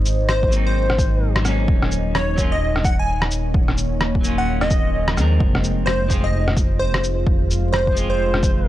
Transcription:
Already playing: G#3 D#4 C5 D#5
0.06 G#1, shaker
0.29 C5, cross-stick
0.43 kick
0.48 F#3 A#3, shaker
0.54 C4 D#4
0.67 C5
0.90 cross-stick
0.99 kick, shaker
1.36 cross-stick
1.41 F#3 A#3, cross-stick, shaker
1.47 C#4 D#4
1.68 D#1 A#3, kick
1.82 cross-stick
1.92 shaker
2.15 C#5, cross-stick
2.36 F#3 A#3 C#4, kick, shaker
2.40 F4
2.52 C#5 D#5
2.76 cross-stick
2.85 F#5, kick, shaker
2.99 G#5
3.22 cross-stick
3.31 D#1, shaker
3.54 D#1, kick
3.68 cross-stick
3.77 D#1, shaker
4.01 cross-stick
4.15 kick
4.21 F#3 A#3, shaker
4.26 C#4 F4
4.38 F#5
4.61 D#5, cross-stick
4.70 kick, shaker
5.08 cross-stick
5.13 D#2 F3 G#3
5.17 C4 A#4, cross-stick, shaker
5.40 F1 G#3, kick
5.55 cross-stick
5.64 shaker
5.74 F4 C5
5.86 C5, cross-stick
6.08 F3 G#3 C4 F4, kick, shaker
6.24 D#5
6.40 F5
6.48 cross-stick
6.57 kick, shaker
6.79 C5
6.94 cross-stick
7.03 F1, shaker
7.27 F1, kick
7.49 F1, shaker
7.72 C5, cross-stick
7.87 kick
7.92 F3 G#3
7.97 C4 F4, shaker
8.10 C5
8.34 cross-stick
8.43 kick, shaker

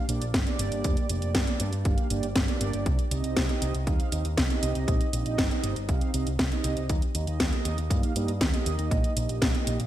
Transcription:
0.09 A#1 A#3 D4 G4 D5, closed hi-hat
0.21 A#1, closed hi-hat
0.34 G1, kick, snare, closed hi-hat
0.47 A#3 D4 G4 D5, closed hi-hat
0.59 G1, closed hi-hat
0.72 G1, closed hi-hat
0.84 F1, kick, closed hi-hat
0.97 closed hi-hat
1.09 F1 A#3 D4 G4 D5, closed hi-hat
1.22 F1, closed hi-hat
1.35 G2, kick, snare, closed hi-hat
1.47 A#3 D4 G4 D5, closed hi-hat
1.60 G2, closed hi-hat
1.73 G2, closed hi-hat
1.85 G1 A#3 D4 G4 F5, kick, closed hi-hat
1.98 closed hi-hat
2.10 G1 A#3 D4 G4 D5, closed hi-hat
2.23 G1, closed hi-hat
2.36 G1, kick, snare, closed hi-hat
2.48 A#3 D4 G4 D5, closed hi-hat
2.61 G1, closed hi-hat
2.73 G1, closed hi-hat
2.86 C2, kick, closed hi-hat
2.99 closed hi-hat
3.11 C2 C4 D#4 G4 D#5, closed hi-hat
3.24 C2, closed hi-hat
3.36 C2, kick, snare, closed hi-hat
3.49 C4 D#4 G4 D#5, closed hi-hat
3.62 C2, closed hi-hat
3.74 C2, closed hi-hat
3.87 D#2 C4 D#4 G4 F5, kick, closed hi-hat
4.00 closed hi-hat
4.12 D#2 C4 D#4 G4 D#5, closed hi-hat
4.25 D#2, closed hi-hat
4.37 C2, kick, snare, closed hi-hat
4.50 C4 D#4 G4 D#5, closed hi-hat
4.63 C2, closed hi-hat
4.75 C2, closed hi-hat
4.88 A#1, kick, closed hi-hat
5.01 closed hi-hat
5.13 A#1 C4 D#4 G4 D#5, closed hi-hat
5.26 A#1, closed hi-hat
5.38 G1, kick, snare, closed hi-hat
5.51 C4 D#4 G4 D#5, closed hi-hat
5.64 G1, closed hi-hat
5.76 G1, closed hi-hat
5.89 C2 C4 D#4 G4 F5, kick, closed hi-hat
6.01 closed hi-hat
6.14 C2 C4 D#4 G4 D#5, closed hi-hat
6.27 C2, closed hi-hat
6.39 C2, kick, snare, closed hi-hat
6.52 C4 D#4 G4 D#5, closed hi-hat
6.64 C2, closed hi-hat
6.77 C2, closed hi-hat
6.89 D#2, kick, closed hi-hat
7.02 closed hi-hat
7.15 D#2 A#3 D#4 G4 D#5, closed hi-hat
7.27 D#2, closed hi-hat
7.40 D#2, kick, snare, closed hi-hat
7.53 A#3 D#4 G4 D#5, closed hi-hat
7.65 D#2, closed hi-hat
7.78 D#2, closed hi-hat
7.90 G2 A#3 D#4 G4 F5, kick, closed hi-hat
8.03 closed hi-hat
8.16 G2 A#3 D#4 G4 D#5, closed hi-hat
8.28 G2, closed hi-hat
8.41 D#2, kick, snare, closed hi-hat
8.54 A#3 D#4 G4 D#5, closed hi-hat
8.66 D#2, closed hi-hat
8.79 D#2, closed hi-hat
8.91 A#1, kick, closed hi-hat
9.04 closed hi-hat
9.17 A#1 A#3 D#4 G4 D#5, closed hi-hat
9.29 A#1, closed hi-hat
9.42 A#1, kick, snare, closed hi-hat
9.54 A#3 D#4 G4 D#5, closed hi-hat
9.67 A#1, closed hi-hat
9.80 A#1, closed hi-hat

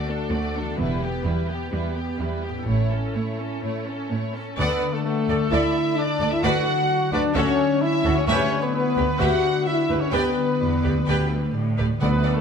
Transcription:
Already playing: D2 D3 A3 D4 F#4 A4
0.09 D4 A4
0.32 D2 A3 F#4 D5
0.56 D4 A4
0.61 E3
0.66 B3
0.70 E4
0.75 E2 B3 G4 B4
0.79 E1 G3 E4
1.02 B3 G4
1.24 E2 G3 E4 B4
1.48 B3 G4
1.72 E2 G3 E4 B4
1.95 B3 G4
2.19 E2 G3 E4 B4
2.42 B3 G4
2.49 A2
2.53 C#4
2.58 E4
2.62 E4 A4 C#5
2.67 A1 A2 A3 C#4 E4
2.90 C#4 A4
3.14 A2 A3 E4 C#5
3.39 C#4 A4
3.62 A2 A3 E4 C#5
3.86 C#4 A4
4.10 A2 A3 E4 C#5
4.33 C#4 A4
4.56 D2 D3 B3 A4 B4 D5 F#5
4.82 D4
4.93 A3 A4
5.04 A3 F#4 A4
5.29 D2 A4 D5
5.51 D2 D3 E4 A4 D5 E5
5.75 A3
5.96 D4 D5
6.20 D2 A4 D5
6.31 E4 E5
6.43 D2 D3 F#4 B4 D5 F#5
6.67 F#3
6.89 B4
7.12 D2 D4 F#4 B4 D5
7.35 D2 D3 C#4 F#4 A4 C#5 E5
7.58 D4
7.81 E4 E5
8.04 D2 F#4 A4 C#5
8.15 C#4 C#5
8.27 D2 D3 C#4 G4 B4 C#5 E5
8.50 D4
8.61 B3 B4
8.73 B3 E4 B4
8.97 D2 G4 B4
9.19 D2 D3 F#4 G4 B4 E5 F#5
9.42 D4
9.65 E4 E5
9.89 D2 G4 B4
10.00 C#4 C#5
10.12 D2 D3 B3 G4 B4 D5 G5
10.37 G3
10.60 E2 D5
10.83 D2 G4 B4 D5
10.97 D2
11.07 D2 D3 G4 B4 D5 G5
11.31 G3
11.54 A2 D5
11.77 D2 G4 B4 D5
12.00 D2 D3 B3 A4 B4 D5 F#5
12.23 F#3 A4 D5 F#5
12.34 A3 A4

